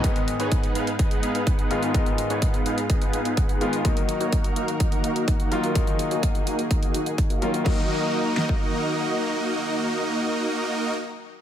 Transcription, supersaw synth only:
\new Staff \with { instrumentName = "Supersaw synth" } { \time 4/4 \key ees \minor \tempo 4 = 126 <ces' ees' aes' ces''>16 r8 <ces' ees' aes' ces'' des''>16 <ces' ees' ces'' ges''>8 <ces' ees' aes' ces'' f''>16 r16 <ces' ees' aes' ces'' ees''>16 <ces' ees' aes' ces'' ges''>16 <ces' ees' aes' ces'' f''>16 <ces' ees' aes' ces'' f''>16 r8 <ces' ees' aes' ces'' f''>8 | <ces' ees' aes' ces'' ees''>16 r8 <ces' ees' aes' ces'' des''>16 <ces' ees' aes' ces''>8 <ces' ees' aes' ces'' f''>16 r16 <ces' ees' aes' ces'' ees''>16 <ces' ees' aes' ces'' ges''>16 <ces' ees' aes' ces'' f''>16 <ces' ees' aes' ces'' f''>16 <ces' ees' aes' ces'' ges''>8 <ces' ees' aes' ces'' f''>8 | <bes ees' ges' bes' ees''>16 r8 <bes ees' ges' bes' des''>16 <bes bes'>8 <bes ees' ges' bes' f''>16 r16 <bes ees' ges' bes' ees''>16 <bes ees' ges' bes' ges''>16 <bes ees' ges' bes' f''>16 <bes ees' ges' bes' f''>16 <bes ees' ges' bes' ges''>8 <bes ees' ges' bes' f''>8 | <bes ees' bes'>16 r8 <bes ees' ges' bes' des''>16 r8 <bes ees' ges' bes' f''>16 r16 <bes ees' ges' bes'>16 <bes ees' ges' bes' ges''>16 <bes ees' ges' bes' ges''>16 r8 <bes ees' ges' bes' f''>16 <bes ees' ges' bes' des''>16 <bes ees' ges' bes' f''>16 |
<bes ees' ges' bes' ees''>1~ | <bes ees' ges' bes' ees''>1 | }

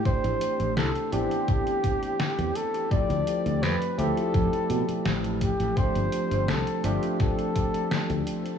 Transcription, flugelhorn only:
\new Staff \with { instrumentName = "Flugelhorn" } { \time 4/4 \key a \minor \tempo 4 = 84 c''4 a'8 g'2 a'8 | d''4 b'8 a'4. r8 g'8 | c''4 a'8 g'8 a'4. r8 | }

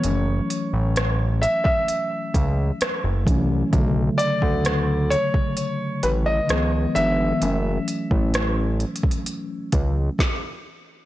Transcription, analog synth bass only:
\new Staff \with { instrumentName = "Analog synth bass" } { \clef bass \time 4/4 \key fis \phrygian \tempo 4 = 65 fis,,8 r16 a,,4 r8. cis,8 r16 fis,,16 c,8 | b,,8 r16 d,4 r8. a,,8 cis,8 g,,8 | fis,,8 r16 a,,4 r8. cis,8 r4 | }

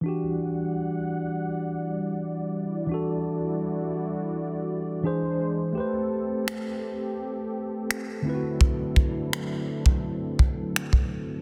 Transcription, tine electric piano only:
\new Staff \with { instrumentName = "Tine electric piano" } { \time 4/4 \key e \minor \tempo 4 = 84 <e d' fis' g'>1 | <e d' fis' a'>2. <e d' gis' c''>4 | <a g' b' c''>2.~ <a g' b' c''>8 <d a c' e' f' fis' b'>8~ | <d a c' e' f' fis' b'>2.~ <d a c' e' f' fis' b'>8 r8 | }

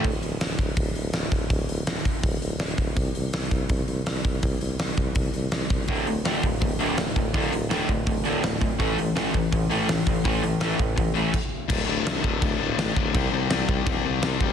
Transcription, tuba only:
\new Staff \with { instrumentName = "Tuba" } { \clef bass \time 4/4 \key a \mixolydian \tempo 4 = 165 d,,8 d,,8 d,,8 d,,8 d,,8 d,,8 d,,8 d,,8 | d,,8 d,,8 d,,8 r8 d,,8 d,,8 d,,8 d,,8 | c,8 c,8 c,8 c,8 c,8 c,8 c,8 c,8 | c,8 c,8 c,8 c,8 c,8 c,8 c,8 c,8 |
d,,8 d,,8 d,,8 d,,8 d,,8 d,,8 d,,8 d,,8 | d,,8 d,,8 d,,8 d,,8 d,,8 d,,8 d,,8 r8 | a,,8 a,,8 a,,8 a,,8 a,,8 a,,8 a,,8 a,,8 | a,,8 a,,8 a,,8 a,,8 a,,8 a,,8 r4 |
\key c \lydian d,,8 d,,8 c,8 d,,8 d,,8 d,,8 a,,8 d,,8 | c,8 c,8 c,8 c,8 e,,8 c,8 c,8 fis,,8 | }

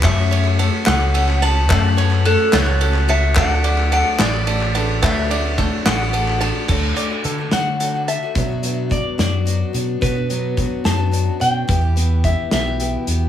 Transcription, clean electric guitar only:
\new Staff \with { instrumentName = "Clean electric guitar" } { \time 6/8 \key b \minor \tempo 4. = 72 e''4 r8 fis''4 a''8 | a''4 a'8 cis''4 e''8 | fis''4 fis''8 d''4. | e''4 r8 fis''4 r8 |
r4. fis''4 e''8~ | e''4 d''8 d''4 r8 | b'4. a''4 g''8~ | g''4 e''8 e''4 r8 | }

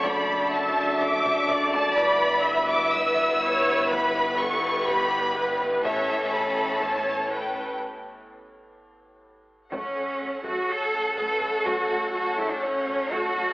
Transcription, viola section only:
\new Staff \with { instrumentName = "Viola section" } { \time 4/4 \key fis \phrygian \tempo 4 = 124 << { d''4 e''2 d''4~ | d''4 e''2 cis''4 | b'4 a'4 g'4 b'4 | cis''4 a'4 cis''4 b'4 |
r1 | a'1~ | a'1 | } \\ { r1 | r1 | r1 | r1 |
r1 | a8 a8 a8 a8 r8 a8 a8 a8 | a8 a8 a8 a8 r8 a8 a8 a8 | } >> }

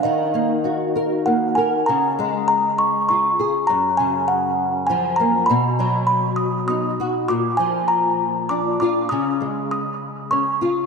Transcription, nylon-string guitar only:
\new Staff \with { instrumentName = "Nylon-string guitar" } { \time 3/4 \key des \mixolydian \tempo 4 = 100 ees8 bes8 ges'8 bes'8 bes8 bes'8 | des8 aes4. f'8 aes'8 | ges,8 des4. f8 bes8 | b,8 fis4. dis'8 fis'8 |
bes,8 f4. d'8 f'8 | des8 aes4. des'8 f'8 | }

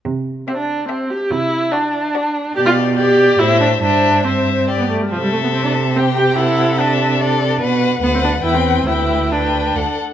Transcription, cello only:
\new Staff \with { instrumentName = "Cello" } { \clef bass \time 3/4 \key c \major \tempo 4 = 143 c4 r2 | c4 r2 | b,2 a,4 | g,2~ g,8 r8 |
c2.~ | c2. | \key g \major b,4 d,4 e,4 | d,2 d,8 r8 | }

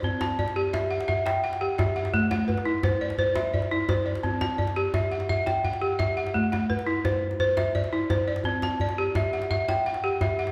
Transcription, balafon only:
\new Staff \with { instrumentName = "Balafon" } { \time 12/8 \key c \lydian \tempo 4. = 114 << { <c'' d''>8 a''8 d''4 e''8 fis''4 g''8 fis''4 e''8 fis''8~ | fis''8 fis''8 b'4 c''8 d''4 e''8 d''4 c''8 d''8~ | d''8 a''8 d''4 e''8 fis''4 g''8 fis''4 e''8 fis''8~ | fis''8 fis''8 b'4 c''4. e''8 d''4 c''8 d''8~ |
d''8 a''8 d''4 e''8 fis''4 g''8 fis''4 e''8 fis''8 | } \\ { c'4 r8 g'4 r8 e''4 r8 g'4 r8 | a4 r8 e'4 r8 c''4 r8 e'4 r8 | c'4 r8 g'4 r8 e''4 r8 g'4 r8 | a4 r8 e'4 r8 c''4 r8 e'4 r8 |
c'4 r8 g'4 r8 e''4 r8 g'4 r8 | } >> }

